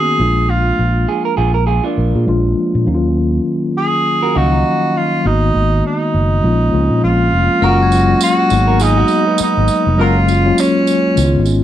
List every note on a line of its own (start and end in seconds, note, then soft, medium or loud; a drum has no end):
0.00 0.21 D#3 medium
0.00 0.19 A#3 medium
0.00 0.21 B3 medium
0.00 0.21 C#4 medium
0.00 0.21 F#4 medium
0.00 0.51 G#4 loud
0.18 0.71 A#1 medium
0.18 1.14 F3 medium
0.18 1.15 G#3 medium
0.18 1.15 A#3 medium
0.18 1.15 D4 medium
0.18 1.16 F4 medium
0.50 1.09 F4 medium
0.79 1.04 A#1 medium
1.08 1.25 F4 soft
1.08 1.24 G#4 soft
1.25 1.37 A#4 medium
1.37 1.79 A#1 medium
1.37 1.54 F4 medium
1.37 1.54 G#4 medium
1.54 1.66 A#4 medium
1.67 1.82 F4 soft
1.67 1.83 G#4 medium
1.84 2.25 D4 soft
1.84 2.24 F4 medium
1.84 1.97 A#4 soft
1.84 1.97 D5 medium
1.98 2.12 A#1 medium
1.98 2.14 A#4 medium
2.15 2.26 A#2 medium
2.15 2.28 F4 soft
2.15 2.43 G#4 medium
2.26 2.53 A#1 medium
2.26 2.76 F3 medium
2.26 2.76 G#3 medium
2.26 2.77 A#3 medium
2.26 2.77 D4 medium
2.26 2.77 F4 loud
2.75 2.85 A#2 medium
2.85 3.38 D#2 medium
2.85 3.62 D#3 medium
2.85 3.63 F#3 medium
2.85 3.63 A#3 medium
2.85 3.63 C#4 medium
2.85 2.95 D#4 medium
2.94 3.67 F4 medium
3.77 4.39 G#4 loud
4.22 4.34 F#4 medium
4.22 4.34 A#4 medium
4.34 4.61 C#2 medium
4.34 4.91 D#3 medium
4.34 4.42 F3 soft
4.34 4.91 A#3 medium
4.34 4.92 C#4 medium
4.34 4.51 D#4 medium
4.34 4.51 F#4 medium
4.34 4.98 F#4 loud
4.34 4.92 F5 medium
4.41 4.94 F#3 medium
4.52 5.20 D#4 medium
4.97 5.28 F4 medium
5.24 5.50 G#1 loud
5.24 6.00 D#3 medium
5.24 6.01 G#3 medium
5.24 6.01 A#3 medium
5.24 6.01 B3 medium
5.24 5.85 D#4 medium
5.24 6.01 F#4 medium
5.55 5.80 G#1 medium
5.86 6.99 D#4 medium
6.14 6.39 F#1 medium
6.42 6.69 A#1 medium
6.42 6.67 F3 medium
6.42 6.67 G#3 medium
6.42 6.68 A#3 medium
6.42 6.68 C#4 medium
6.42 6.68 F4 medium
6.71 6.88 C#2 medium
6.71 7.28 F3 medium
6.71 7.28 G#3 medium
6.71 7.29 A#3 medium
6.71 6.80 C4 medium
6.71 7.29 F4 medium
6.80 7.32 C#4 medium
6.91 7.01 A#2 medium
7.03 7.29 A#1 medium
7.03 7.65 F4 medium
7.33 7.47 F1 medium
7.60 8.13 F#1 loud
7.60 7.81 F#3 medium
7.60 7.80 F#3 medium
7.60 7.81 G#3 medium
7.60 7.82 A#3 medium
7.60 7.82 C#4 medium
7.60 7.80 F4 medium
7.60 7.82 F4 medium
7.60 8.22 F#4 loud
7.60 7.80 A#4 medium
7.60 8.76 F6 medium
7.82 8.95 G#6 medium
7.90 8.01 F#3 medium
7.90 8.02 G#3 medium
7.90 8.02 A#3 medium
7.90 8.02 C#4 medium
7.90 8.03 F4 medium
7.90 tambourine soft
8.00 9.10 A#6 medium
8.07 8.48 F#3 medium
8.07 8.49 G#3 medium
8.07 8.49 A#3 medium
8.07 8.51 C#4 medium
8.07 8.51 F4 medium
8.21 8.84 F#4 loud
8.21 tambourine medium
8.49 9.02 G#1 medium
8.49 9.45 F#3 medium
8.49 9.46 G#3 medium
8.49 9.46 A#3 medium
8.49 9.46 B3 medium
8.49 9.47 D#4 medium
8.49 tambourine medium
8.67 8.80 F#4 medium
8.67 8.79 A#4 medium
8.80 9.40 D#4 loud
8.80 8.97 F4 medium
8.80 8.96 G#4 medium
8.80 tambourine medium
8.97 9.26 D#4 medium
8.97 9.25 F#4 medium
9.08 tambourine soft
9.27 9.95 B3 medium
9.27 9.95 D#4 medium
9.38 10.02 D#4 medium
9.38 muted fingered electric bass stroke soft
9.38 tambourine medium
9.57 9.68 G#1 medium
9.68 tambourine soft
9.87 9.99 F1 medium
9.97 10.50 F#1 loud
9.97 10.18 F#3 medium
9.97 10.17 F#3 medium
9.97 10.18 G#3 medium
9.97 10.18 A#3 medium
9.97 10.19 C#4 medium
9.97 10.17 F4 medium
9.97 10.19 F4 medium
9.97 10.62 F4 loud
9.97 10.17 A#4 medium
10.26 10.38 F#3 medium
10.26 10.38 G#3 medium
10.26 10.38 A#3 medium
10.26 10.39 C#4 medium
10.26 10.39 F4 medium
10.26 tambourine soft
10.44 11.16 F#3 medium
10.44 11.15 G#3 medium
10.44 11.17 A#3 medium
10.44 11.16 C#4 medium
10.44 11.17 F4 medium
10.58 11.51 C#4 medium
10.58 tambourine medium
10.87 tambourine soft
11.16 11.36 C#2 loud
11.16 11.64 D#3 medium
11.16 11.64 G#3 medium
11.16 11.64 B3 medium
11.16 11.64 C#4 medium
11.16 11.25 E4 medium
11.16 tambourine medium
11.25 11.64 F4 medium
11.35 11.60 G#1 medium
11.46 tambourine soft